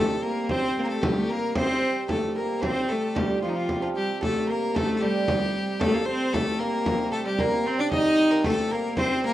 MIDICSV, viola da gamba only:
0, 0, Header, 1, 2, 480
1, 0, Start_track
1, 0, Tempo, 529568
1, 450, Time_signature, 2, 2, 24, 8
1, 8461, End_track
2, 0, Start_track
2, 0, Title_t, "Viola da gamba"
2, 0, Program_c, 0, 42
2, 0, Note_on_c, 0, 57, 88
2, 193, Note_off_c, 0, 57, 0
2, 206, Note_on_c, 0, 58, 92
2, 462, Note_on_c, 0, 60, 110
2, 476, Note_off_c, 0, 58, 0
2, 712, Note_on_c, 0, 58, 90
2, 713, Note_off_c, 0, 60, 0
2, 713, Note_on_c, 0, 60, 67
2, 726, Note_off_c, 0, 58, 0
2, 760, Note_on_c, 0, 58, 90
2, 774, Note_off_c, 0, 60, 0
2, 817, Note_off_c, 0, 58, 0
2, 838, Note_on_c, 0, 57, 77
2, 939, Note_off_c, 0, 57, 0
2, 954, Note_on_c, 0, 55, 88
2, 1071, Note_on_c, 0, 57, 89
2, 1085, Note_off_c, 0, 55, 0
2, 1185, Note_on_c, 0, 58, 95
2, 1198, Note_off_c, 0, 57, 0
2, 1422, Note_off_c, 0, 58, 0
2, 1435, Note_on_c, 0, 60, 102
2, 1876, Note_off_c, 0, 60, 0
2, 1918, Note_on_c, 0, 57, 75
2, 2176, Note_on_c, 0, 58, 77
2, 2189, Note_off_c, 0, 57, 0
2, 2400, Note_on_c, 0, 60, 99
2, 2414, Note_off_c, 0, 58, 0
2, 2646, Note_on_c, 0, 57, 85
2, 2660, Note_off_c, 0, 60, 0
2, 2886, Note_on_c, 0, 55, 81
2, 2899, Note_off_c, 0, 57, 0
2, 3111, Note_off_c, 0, 55, 0
2, 3116, Note_on_c, 0, 53, 82
2, 3558, Note_off_c, 0, 53, 0
2, 3591, Note_on_c, 0, 55, 85
2, 3698, Note_off_c, 0, 55, 0
2, 3842, Note_on_c, 0, 57, 90
2, 4081, Note_on_c, 0, 58, 87
2, 4094, Note_off_c, 0, 57, 0
2, 4327, Note_on_c, 0, 57, 109
2, 4341, Note_off_c, 0, 58, 0
2, 4558, Note_on_c, 0, 55, 96
2, 4571, Note_off_c, 0, 57, 0
2, 5264, Note_off_c, 0, 55, 0
2, 5269, Note_on_c, 0, 57, 115
2, 5386, Note_on_c, 0, 58, 94
2, 5399, Note_off_c, 0, 57, 0
2, 5505, Note_off_c, 0, 58, 0
2, 5523, Note_on_c, 0, 60, 96
2, 5748, Note_on_c, 0, 57, 90
2, 5761, Note_off_c, 0, 60, 0
2, 5980, Note_on_c, 0, 58, 91
2, 5994, Note_off_c, 0, 57, 0
2, 6463, Note_on_c, 0, 57, 88
2, 6477, Note_off_c, 0, 58, 0
2, 6581, Note_off_c, 0, 57, 0
2, 6586, Note_on_c, 0, 55, 87
2, 6714, Note_on_c, 0, 58, 94
2, 6727, Note_off_c, 0, 55, 0
2, 6949, Note_on_c, 0, 60, 101
2, 6962, Note_off_c, 0, 58, 0
2, 7070, Note_on_c, 0, 62, 96
2, 7084, Note_off_c, 0, 60, 0
2, 7182, Note_off_c, 0, 62, 0
2, 7193, Note_on_c, 0, 63, 118
2, 7665, Note_on_c, 0, 57, 96
2, 7679, Note_off_c, 0, 63, 0
2, 7913, Note_on_c, 0, 58, 89
2, 7927, Note_off_c, 0, 57, 0
2, 8139, Note_on_c, 0, 60, 107
2, 8152, Note_off_c, 0, 58, 0
2, 8371, Note_off_c, 0, 60, 0
2, 8395, Note_on_c, 0, 58, 90
2, 8461, Note_off_c, 0, 58, 0
2, 8461, End_track
0, 0, End_of_file